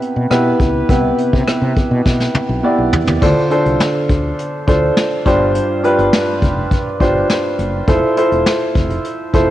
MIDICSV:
0, 0, Header, 1, 5, 480
1, 0, Start_track
1, 0, Tempo, 582524
1, 733, Time_signature, 4, 2, 24, 8
1, 7831, End_track
2, 0, Start_track
2, 0, Title_t, "Grand piano"
2, 0, Program_c, 0, 0
2, 0, Control_c, 0, 64, 127
2, 0, Note_on_c, 0, 48, 65
2, 0, Note_on_c, 0, 59, 74
2, 0, Note_on_c, 0, 64, 72
2, 0, Note_on_c, 0, 67, 71
2, 0, Note_on_c, 0, 71, 80
2, 250, Note_off_c, 0, 59, 0
2, 250, Note_on_c, 0, 59, 78
2, 253, Note_off_c, 0, 64, 0
2, 253, Note_on_c, 0, 64, 74
2, 256, Note_off_c, 0, 67, 0
2, 256, Note_on_c, 0, 67, 69
2, 259, Note_off_c, 0, 71, 0
2, 259, Note_on_c, 0, 71, 86
2, 566, Note_off_c, 0, 59, 0
2, 567, Note_off_c, 0, 64, 0
2, 569, Note_off_c, 0, 67, 0
2, 571, Note_off_c, 0, 71, 0
2, 731, Note_on_c, 0, 59, 72
2, 733, Note_on_c, 0, 64, 72
2, 735, Note_off_c, 0, 48, 0
2, 735, Note_on_c, 0, 48, 63
2, 737, Note_on_c, 0, 67, 72
2, 740, Note_on_c, 0, 71, 80
2, 1361, Note_off_c, 0, 59, 0
2, 1362, Note_off_c, 0, 64, 0
2, 1364, Note_off_c, 0, 67, 0
2, 1365, Note_off_c, 0, 71, 0
2, 1421, Note_off_c, 0, 48, 0
2, 2168, Note_on_c, 0, 59, 74
2, 2171, Note_on_c, 0, 64, 70
2, 2174, Note_on_c, 0, 67, 67
2, 2178, Note_on_c, 0, 74, 85
2, 2485, Note_off_c, 0, 59, 0
2, 2487, Note_off_c, 0, 64, 0
2, 2488, Note_off_c, 0, 67, 0
2, 2490, Note_off_c, 0, 74, 0
2, 2649, Note_on_c, 0, 62, 79
2, 2653, Note_on_c, 0, 65, 71
2, 2654, Note_on_c, 0, 50, 66
2, 2656, Note_on_c, 0, 69, 70
2, 2659, Note_on_c, 0, 72, 88
2, 2664, Control_c, 0, 64, 0
2, 2809, Note_off_c, 0, 62, 0
2, 2810, Note_off_c, 0, 65, 0
2, 2812, Note_off_c, 0, 69, 0
2, 2814, Note_off_c, 0, 72, 0
2, 2828, Control_c, 0, 64, 127
2, 2888, Note_on_c, 0, 62, 76
2, 2892, Note_on_c, 0, 65, 73
2, 2895, Note_on_c, 0, 69, 71
2, 2898, Note_on_c, 0, 72, 85
2, 3341, Note_off_c, 0, 50, 0
2, 3520, Note_off_c, 0, 62, 0
2, 3521, Note_off_c, 0, 65, 0
2, 3523, Note_off_c, 0, 69, 0
2, 3525, Note_off_c, 0, 72, 0
2, 3849, Note_on_c, 0, 62, 72
2, 3853, Note_on_c, 0, 65, 66
2, 3856, Note_on_c, 0, 69, 66
2, 3859, Note_on_c, 0, 72, 78
2, 4317, Note_off_c, 0, 62, 0
2, 4321, Note_off_c, 0, 65, 0
2, 4326, Note_off_c, 0, 69, 0
2, 4328, Note_off_c, 0, 72, 0
2, 4330, Note_on_c, 0, 62, 81
2, 4333, Note_on_c, 0, 65, 75
2, 4335, Note_on_c, 0, 43, 68
2, 4337, Note_on_c, 0, 67, 74
2, 4340, Note_on_c, 0, 72, 92
2, 4345, Control_c, 0, 64, 0
2, 4510, Control_c, 0, 64, 127
2, 4716, Note_off_c, 0, 62, 0
2, 4717, Note_off_c, 0, 65, 0
2, 4719, Note_off_c, 0, 67, 0
2, 4721, Note_off_c, 0, 72, 0
2, 4809, Note_on_c, 0, 62, 81
2, 4812, Note_on_c, 0, 65, 75
2, 4816, Note_on_c, 0, 67, 71
2, 4819, Note_on_c, 0, 71, 88
2, 5021, Note_off_c, 0, 43, 0
2, 5440, Note_off_c, 0, 62, 0
2, 5441, Note_off_c, 0, 65, 0
2, 5443, Note_off_c, 0, 67, 0
2, 5445, Note_off_c, 0, 71, 0
2, 5768, Note_on_c, 0, 62, 73
2, 5771, Note_on_c, 0, 65, 69
2, 5775, Note_on_c, 0, 67, 65
2, 5777, Note_on_c, 0, 72, 80
2, 6242, Note_off_c, 0, 62, 0
2, 6244, Note_off_c, 0, 65, 0
2, 6246, Note_off_c, 0, 67, 0
2, 6247, Note_off_c, 0, 72, 0
2, 6489, Note_on_c, 0, 64, 76
2, 6493, Note_on_c, 0, 65, 72
2, 6497, Note_on_c, 0, 69, 71
2, 6500, Note_on_c, 0, 72, 87
2, 6505, Control_c, 0, 64, 0
2, 6642, Control_c, 0, 64, 127
2, 6649, Note_off_c, 0, 64, 0
2, 6651, Note_off_c, 0, 65, 0
2, 6652, Note_off_c, 0, 69, 0
2, 6654, Note_off_c, 0, 72, 0
2, 6730, Note_on_c, 0, 64, 78
2, 6734, Note_on_c, 0, 65, 73
2, 6737, Note_on_c, 0, 69, 72
2, 6739, Note_on_c, 0, 72, 85
2, 7361, Note_off_c, 0, 64, 0
2, 7362, Note_off_c, 0, 65, 0
2, 7364, Note_off_c, 0, 69, 0
2, 7365, Note_off_c, 0, 72, 0
2, 7689, Note_on_c, 0, 64, 75
2, 7692, Note_on_c, 0, 65, 67
2, 7695, Note_on_c, 0, 69, 71
2, 7698, Note_on_c, 0, 72, 81
2, 7831, Note_off_c, 0, 64, 0
2, 7831, Note_off_c, 0, 65, 0
2, 7831, Note_off_c, 0, 69, 0
2, 7831, Note_off_c, 0, 72, 0
2, 7831, End_track
3, 0, Start_track
3, 0, Title_t, "Fretless electric bass"
3, 0, Program_c, 1, 35
3, 134, Note_on_c, 1, 47, 76
3, 224, Note_off_c, 1, 47, 0
3, 252, Note_on_c, 1, 47, 72
3, 433, Note_off_c, 1, 47, 0
3, 493, Note_on_c, 1, 37, 71
3, 673, Note_off_c, 1, 37, 0
3, 734, Note_on_c, 1, 36, 86
3, 914, Note_off_c, 1, 36, 0
3, 1096, Note_on_c, 1, 48, 83
3, 1185, Note_off_c, 1, 48, 0
3, 1332, Note_on_c, 1, 48, 85
3, 1422, Note_off_c, 1, 48, 0
3, 1574, Note_on_c, 1, 47, 80
3, 1664, Note_off_c, 1, 47, 0
3, 1694, Note_on_c, 1, 47, 77
3, 1874, Note_off_c, 1, 47, 0
3, 2052, Note_on_c, 1, 35, 78
3, 2142, Note_off_c, 1, 35, 0
3, 2292, Note_on_c, 1, 35, 72
3, 2383, Note_off_c, 1, 35, 0
3, 2413, Note_on_c, 1, 40, 73
3, 2503, Note_off_c, 1, 40, 0
3, 2534, Note_on_c, 1, 39, 74
3, 2624, Note_off_c, 1, 39, 0
3, 2654, Note_on_c, 1, 38, 100
3, 2744, Note_off_c, 1, 38, 0
3, 3014, Note_on_c, 1, 36, 78
3, 3104, Note_off_c, 1, 36, 0
3, 3374, Note_on_c, 1, 38, 86
3, 3554, Note_off_c, 1, 38, 0
3, 3854, Note_on_c, 1, 38, 88
3, 4034, Note_off_c, 1, 38, 0
3, 4333, Note_on_c, 1, 31, 82
3, 4603, Note_off_c, 1, 31, 0
3, 4932, Note_on_c, 1, 31, 75
3, 5023, Note_off_c, 1, 31, 0
3, 5293, Note_on_c, 1, 29, 85
3, 5473, Note_off_c, 1, 29, 0
3, 5773, Note_on_c, 1, 31, 80
3, 5953, Note_off_c, 1, 31, 0
3, 6252, Note_on_c, 1, 30, 79
3, 6433, Note_off_c, 1, 30, 0
3, 6492, Note_on_c, 1, 29, 97
3, 6583, Note_off_c, 1, 29, 0
3, 6853, Note_on_c, 1, 28, 76
3, 6943, Note_off_c, 1, 28, 0
3, 7212, Note_on_c, 1, 29, 85
3, 7393, Note_off_c, 1, 29, 0
3, 7693, Note_on_c, 1, 29, 86
3, 7831, Note_off_c, 1, 29, 0
3, 7831, End_track
4, 0, Start_track
4, 0, Title_t, "Muted fretless electric bass strokes"
4, 1213, Note_on_c, 9, 29, 43
4, 1295, Note_off_c, 9, 29, 0
4, 1933, Note_on_c, 9, 29, 44
4, 2015, Note_off_c, 9, 29, 0
4, 7831, End_track
5, 0, Start_track
5, 0, Title_t, "Drums"
5, 16, Note_on_c, 9, 42, 69
5, 98, Note_off_c, 9, 42, 0
5, 254, Note_on_c, 9, 42, 68
5, 255, Note_on_c, 9, 37, 93
5, 337, Note_off_c, 9, 42, 0
5, 338, Note_off_c, 9, 37, 0
5, 494, Note_on_c, 9, 36, 86
5, 496, Note_on_c, 9, 42, 69
5, 576, Note_off_c, 9, 36, 0
5, 578, Note_off_c, 9, 42, 0
5, 734, Note_on_c, 9, 36, 104
5, 735, Note_on_c, 9, 42, 86
5, 817, Note_off_c, 9, 36, 0
5, 818, Note_off_c, 9, 42, 0
5, 973, Note_on_c, 9, 42, 73
5, 1056, Note_off_c, 9, 42, 0
5, 1097, Note_on_c, 9, 36, 79
5, 1179, Note_off_c, 9, 36, 0
5, 1214, Note_on_c, 9, 42, 74
5, 1215, Note_on_c, 9, 37, 108
5, 1297, Note_off_c, 9, 37, 0
5, 1297, Note_off_c, 9, 42, 0
5, 1452, Note_on_c, 9, 42, 68
5, 1454, Note_on_c, 9, 36, 85
5, 1534, Note_off_c, 9, 42, 0
5, 1537, Note_off_c, 9, 36, 0
5, 1694, Note_on_c, 9, 36, 80
5, 1694, Note_on_c, 9, 38, 49
5, 1776, Note_off_c, 9, 38, 0
5, 1777, Note_off_c, 9, 36, 0
5, 1813, Note_on_c, 9, 38, 48
5, 1896, Note_off_c, 9, 38, 0
5, 1933, Note_on_c, 9, 48, 62
5, 2015, Note_off_c, 9, 48, 0
5, 2413, Note_on_c, 9, 43, 87
5, 2495, Note_off_c, 9, 43, 0
5, 2533, Note_on_c, 9, 43, 77
5, 2615, Note_off_c, 9, 43, 0
5, 2651, Note_on_c, 9, 49, 80
5, 2653, Note_on_c, 9, 36, 107
5, 2734, Note_off_c, 9, 49, 0
5, 2736, Note_off_c, 9, 36, 0
5, 2890, Note_on_c, 9, 42, 79
5, 2973, Note_off_c, 9, 42, 0
5, 3015, Note_on_c, 9, 42, 47
5, 3097, Note_off_c, 9, 42, 0
5, 3131, Note_on_c, 9, 42, 85
5, 3132, Note_on_c, 9, 38, 106
5, 3214, Note_off_c, 9, 38, 0
5, 3214, Note_off_c, 9, 42, 0
5, 3371, Note_on_c, 9, 42, 67
5, 3374, Note_on_c, 9, 36, 86
5, 3453, Note_off_c, 9, 42, 0
5, 3456, Note_off_c, 9, 36, 0
5, 3615, Note_on_c, 9, 42, 89
5, 3698, Note_off_c, 9, 42, 0
5, 3854, Note_on_c, 9, 36, 87
5, 3854, Note_on_c, 9, 42, 77
5, 3936, Note_off_c, 9, 36, 0
5, 3936, Note_off_c, 9, 42, 0
5, 4093, Note_on_c, 9, 42, 70
5, 4094, Note_on_c, 9, 38, 100
5, 4175, Note_off_c, 9, 42, 0
5, 4176, Note_off_c, 9, 38, 0
5, 4333, Note_on_c, 9, 36, 100
5, 4334, Note_on_c, 9, 42, 79
5, 4416, Note_off_c, 9, 36, 0
5, 4416, Note_off_c, 9, 42, 0
5, 4572, Note_on_c, 9, 42, 87
5, 4655, Note_off_c, 9, 42, 0
5, 4812, Note_on_c, 9, 42, 77
5, 4894, Note_off_c, 9, 42, 0
5, 4934, Note_on_c, 9, 42, 50
5, 5016, Note_off_c, 9, 42, 0
5, 5051, Note_on_c, 9, 38, 110
5, 5051, Note_on_c, 9, 42, 81
5, 5133, Note_off_c, 9, 42, 0
5, 5134, Note_off_c, 9, 38, 0
5, 5291, Note_on_c, 9, 42, 71
5, 5293, Note_on_c, 9, 36, 90
5, 5373, Note_off_c, 9, 42, 0
5, 5375, Note_off_c, 9, 36, 0
5, 5533, Note_on_c, 9, 36, 85
5, 5534, Note_on_c, 9, 42, 82
5, 5616, Note_off_c, 9, 36, 0
5, 5616, Note_off_c, 9, 42, 0
5, 5773, Note_on_c, 9, 36, 90
5, 5773, Note_on_c, 9, 42, 74
5, 5856, Note_off_c, 9, 36, 0
5, 5856, Note_off_c, 9, 42, 0
5, 6013, Note_on_c, 9, 42, 77
5, 6014, Note_on_c, 9, 38, 100
5, 6095, Note_off_c, 9, 42, 0
5, 6096, Note_off_c, 9, 38, 0
5, 6254, Note_on_c, 9, 42, 78
5, 6336, Note_off_c, 9, 42, 0
5, 6493, Note_on_c, 9, 36, 106
5, 6493, Note_on_c, 9, 42, 86
5, 6575, Note_off_c, 9, 36, 0
5, 6576, Note_off_c, 9, 42, 0
5, 6731, Note_on_c, 9, 42, 84
5, 6813, Note_off_c, 9, 42, 0
5, 6854, Note_on_c, 9, 42, 50
5, 6936, Note_off_c, 9, 42, 0
5, 6972, Note_on_c, 9, 38, 112
5, 6972, Note_on_c, 9, 42, 85
5, 7054, Note_off_c, 9, 42, 0
5, 7055, Note_off_c, 9, 38, 0
5, 7210, Note_on_c, 9, 42, 70
5, 7213, Note_on_c, 9, 36, 90
5, 7293, Note_off_c, 9, 42, 0
5, 7295, Note_off_c, 9, 36, 0
5, 7333, Note_on_c, 9, 42, 52
5, 7416, Note_off_c, 9, 42, 0
5, 7452, Note_on_c, 9, 42, 91
5, 7535, Note_off_c, 9, 42, 0
5, 7692, Note_on_c, 9, 42, 75
5, 7693, Note_on_c, 9, 36, 88
5, 7774, Note_off_c, 9, 42, 0
5, 7775, Note_off_c, 9, 36, 0
5, 7831, End_track
0, 0, End_of_file